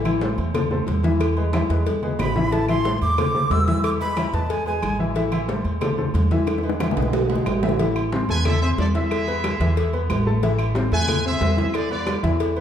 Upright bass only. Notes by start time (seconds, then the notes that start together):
Already playing: A1
0.38 E2
0.87 E2
1.70 E2
2.19 A1
3.01 E2
3.50 E2
4.33 E2
4.82 A1
5.64 E2
6.14 E2
6.97 B1
7.46 A1
8.29 E2
8.78 E2
9.60 E2
10.10 A1
10.92 E2
11.41 E2
12.23 E2